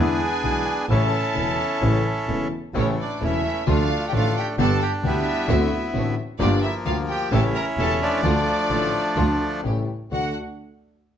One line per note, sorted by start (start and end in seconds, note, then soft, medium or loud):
0.00 0.17 E2 loud
0.00 0.16 D3 medium
0.00 0.17 E3 medium
0.00 0.17 G#3 medium
0.00 0.17 B3 medium
0.00 0.86 B3 medium
0.00 0.86 D4 medium
0.00 0.17 E4 medium
0.00 0.86 G#4 loud
0.00 0.85 G#5 loud
0.43 0.63 B1 medium
0.43 0.63 B2 medium
0.43 0.63 D3 soft
0.43 0.63 G#3 soft
0.43 0.63 B3 soft
0.43 0.63 E4 medium
0.89 1.08 A1 loud
0.89 1.09 A1 medium
0.89 1.09 A2 medium
0.89 1.09 C#3 medium
0.89 1.09 E3 medium
0.89 1.09 A3 medium
0.89 2.48 C#4 medium
0.89 2.48 E4 medium
0.89 1.09 E4 medium
0.89 2.48 A4 loud
0.89 2.47 A5 medium
1.34 1.54 E1 medium
1.34 1.55 E1 medium
1.34 1.55 E2 medium
1.34 1.54 C#3 medium
1.34 1.54 E3 soft
1.34 1.55 A3 soft
1.34 1.55 E4 medium
1.82 2.01 A1 loud
1.82 2.01 A1 medium
1.82 2.01 A2 medium
1.82 2.01 C#3 medium
1.82 2.01 E3 medium
1.82 2.01 A3 medium
1.82 2.01 E4 medium
2.28 2.47 E1 medium
2.28 2.48 E1 medium
2.28 2.48 E2 medium
2.28 2.47 C#3 medium
2.28 2.48 E3 soft
2.28 2.48 A3 soft
2.28 2.48 E4 medium
2.74 2.94 A1 loud
2.74 2.94 A1 medium
2.74 2.94 A2 medium
2.74 2.94 C#3 medium
2.74 2.94 E3 medium
2.74 3.64 E3 medium
2.74 2.94 A3 medium
2.74 3.23 A3 medium
2.74 2.94 C#4 medium
2.74 2.94 E4 medium
2.78 2.88 C#4 medium
2.78 2.88 C#5 medium
3.00 3.24 D4 medium
3.00 3.21 D5 medium
3.21 3.40 E1 medium
3.21 3.40 E2 medium
3.21 3.40 C#3 medium
3.21 3.40 E3 soft
3.21 3.40 A3 medium
3.21 3.40 A3 soft
3.21 3.40 C#4 soft
3.21 3.65 C#4 medium
3.21 3.40 E4 medium
3.25 3.66 A3 medium
3.25 3.66 E4 medium
3.25 3.66 E5 medium
3.67 3.86 D2 medium
3.67 3.86 D2 loud
3.67 3.86 D3 medium
3.67 3.86 F3 medium
3.67 3.86 A3 medium
3.67 3.87 A3 medium
3.67 4.56 A3 medium
3.67 3.86 D4 medium
3.67 4.56 D4 medium
3.67 3.86 F4 medium
3.67 3.87 F4 medium
3.67 4.06 F4 medium
3.67 4.06 F5 medium
4.08 4.13 G4 medium
4.08 4.13 G5 medium
4.12 4.32 A1 medium
4.12 4.32 A2 medium
4.12 4.31 D3 medium
4.12 4.32 F3 soft
4.12 4.32 A3 medium
4.12 4.32 A3 soft
4.12 4.32 D4 medium
4.12 4.32 F4 medium
4.12 4.35 F5 medium
4.16 4.36 F4 loud
4.36 4.48 G4 loud
4.36 4.46 G5 medium
4.58 4.77 G1 loud
4.58 4.77 G1 medium
4.58 4.77 G2 medium
4.58 4.77 D3 medium
4.58 4.77 G3 medium
4.58 4.77 B3 medium
4.58 4.78 B3 medium
4.58 4.77 D4 medium
4.58 5.47 D4 medium
4.58 4.77 G4 medium
4.58 4.78 G4 medium
4.58 4.83 A4 loud
4.58 4.80 A5 loud
4.81 4.93 G4 loud
4.81 4.92 G5 medium
5.03 5.23 D2 medium
5.03 5.23 D3 medium
5.03 5.23 G3 soft
5.03 5.48 G3 medium
5.03 5.23 B3 medium
5.03 5.23 B3 soft
5.03 6.15 B3 medium
5.03 5.23 D4 soft
5.03 6.15 E4 loud
5.03 5.23 G4 medium
5.03 6.13 E5 medium
5.48 5.68 D2 loud
5.48 5.68 D3 loud
5.48 5.68 A3 medium
5.48 5.68 C4 medium
5.48 5.68 D4 medium
5.48 5.68 F#4 medium
5.94 6.13 A1 medium
5.94 6.13 A2 medium
5.94 6.13 D3 medium
5.94 6.13 A3 soft
5.94 6.13 C4 soft
5.94 6.14 C4 medium
5.94 6.14 D4 medium
5.94 6.14 F#4 medium
6.39 6.59 G1 loud
6.39 6.59 G2 medium
6.39 6.59 D3 medium
6.39 6.59 G3 medium
6.39 6.59 A#3 medium
6.39 6.63 D4 medium
6.39 6.59 F4 medium
6.39 6.60 G4 medium
6.39 6.61 D5 medium
6.43 7.29 F3 medium
6.43 7.30 A#3 medium
6.62 6.75 E4 medium
6.62 6.73 E5 medium
6.86 7.05 D2 medium
6.86 7.05 D3 medium
6.86 7.05 G3 medium
6.86 7.05 A#3 medium
6.86 7.05 A#3 soft
6.86 7.05 F4 medium
6.86 7.06 F4 soft
6.86 6.97 F4 medium
6.86 7.06 G4 medium
6.86 6.96 F5 medium
7.08 7.31 G4 loud
7.08 7.30 G5 medium
7.31 7.51 A1 loud
7.31 7.51 A2 loud
7.31 7.51 C#3 medium
7.31 7.51 G3 medium
7.31 7.51 A3 medium
7.31 7.51 C#4 medium
7.31 8.21 C#4 medium
7.31 7.51 E4 medium
7.31 8.21 E4 medium
7.31 7.51 G4 medium
7.31 7.44 A4 loud
7.31 7.42 A5 medium
7.55 7.66 A#4 loud
7.55 7.65 A#5 medium
7.77 7.97 E1 medium
7.77 7.98 E1 medium
7.77 7.97 E2 medium
7.77 7.97 C#3 medium
7.77 7.97 G3 soft
7.77 7.97 A3 soft
7.77 7.97 A3 medium
7.77 7.98 C#4 medium
7.77 7.97 E4 medium
7.77 7.98 G4 medium
7.77 8.00 A4 loud
7.77 8.00 A5 medium
8.02 9.61 F3 medium
8.02 9.61 A3 medium
8.02 9.61 D4 loud
8.02 9.61 D5 medium
8.23 8.43 D2 loud
8.23 8.43 D2 medium
8.23 8.43 D3 loud
8.23 8.43 F3 medium
8.23 8.44 A3 medium
8.23 8.44 D4 medium
8.23 8.44 F4 medium
8.70 8.89 A1 medium
8.70 8.90 A1 medium
8.70 8.89 A2 medium
8.70 8.89 D3 medium
8.70 8.89 F3 soft
8.70 8.90 A3 medium
8.70 8.90 A3 soft
8.70 8.90 D4 soft
8.70 8.90 F4 medium
9.16 9.36 D2 loud
9.16 9.36 D2 medium
9.16 9.36 D3 medium
9.16 9.36 F3 medium
9.16 9.36 A3 medium
9.16 9.37 A3 medium
9.16 9.36 D4 medium
9.16 9.36 F4 medium
9.63 9.84 A1 medium
9.63 9.84 A2 medium
9.63 9.84 C#3 soft
9.63 9.84 G3 soft
9.63 9.84 A3 soft
9.63 9.84 A3 medium
9.63 9.84 C#4 medium
9.63 9.84 E4 medium
9.63 9.84 G4 medium
10.11 10.31 D2 medium
10.11 10.31 A3 medium
10.11 10.31 D4 medium
10.11 10.31 F#4 medium
10.11 10.34 F#4 medium
10.11 10.33 F#5 medium